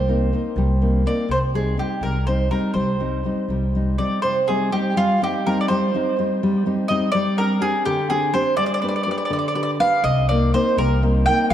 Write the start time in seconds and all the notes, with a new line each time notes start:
Already playing: C2 G3 C5
0.09 A#3 C4 D#4
0.33 A#3 C4 D#4
0.56 C2 G3
0.82 A#3 C4 D#4
1.06 A#3 C4 D#4 D5
1.28 C2 C3 C5
1.54 G3 C4 D#4 G#4
1.77 G3 C4 D#4 G4
2.01 C2 G3 A#4
2.27 G3 C4 D#4 C5
2.51 G3 C4 D#4 A#4
2.74 C2 G3 C5
3.00 G3 C4 D#4
3.25 G3 C4 D#4
3.48 C2 G3
3.75 G3 C4 D#4
3.98 G3 C4 D#4 D5
4.22 C3 C5
4.48 G3 C4 D#4 G#4
4.72 G3 C4 D#4 G4
4.97 G3 F4
5.22 G3 C4 D#4 G4
5.46 G3 C4 D#4 A#4
5.61 D5
5.68 G3 C5
5.94 G3 C4 D#4
6.19 G3 C4 D#4
6.43 G3
6.66 G3 C4 D#4
6.88 G3 C4 D#4 D#5
7.12 G3 D5
7.38 C4 D4 G4 A#4
7.61 C4 D4 G4 G#4
7.85 D3 G4
8.10 C4 D4 G4 G#4
8.34 C4 D4 G4 C5
8.57 G3 D5
8.66 D5
8.74 D5
8.82 D4 G4 B4 D5
8.89 D5
8.96 D5
9.03 D4 G4 D5
9.08 B4 D5
9.18 D5
9.25 D5
9.30 D3 D5
9.39 D5
9.48 D5
9.55 D4 G4 B4 D5
9.63 D5
9.80 D4 G4 B4 F5
10.04 C2 C3 D#5
10.29 A#3 C4 D#4 D5
10.54 A#3 C4 D#4 C5
10.77 C2 G3 A#4
11.03 A#3 C4 D#4
11.26 A#3 C4 D#4 G5
11.50 C2 G3 F5